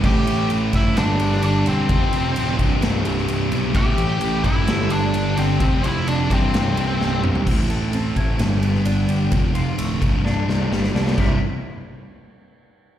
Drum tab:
CC |x---------------|----------------|----------------|----------------|
RD |--x-x-x-x-x-x-x-|x-x-x-x-x-x-x-x-|x-x-x-x-x-x-x-x-|x-x-x-x-x-x-----|
SD |--------o--o----|--------o--o----|--------o-------|--------o---o---|
T2 |----------------|----------------|----------------|--------------o-|
FT |----------------|----------------|----------------|---------------o|
BD |o-----o---------|o-----o---------|o-----o---------|o-----o---------|

CC |x---------------|----------------|x---------------|
RD |--x-x-x-x-x-x-x-|x-x-x-x---------|----------------|
SD |--------o--o----|--------o-o-oooo|----------------|
T2 |----------------|----------------|----------------|
FT |----------------|----------------|----------------|
BD |o-----o---------|o-----o---------|o---------------|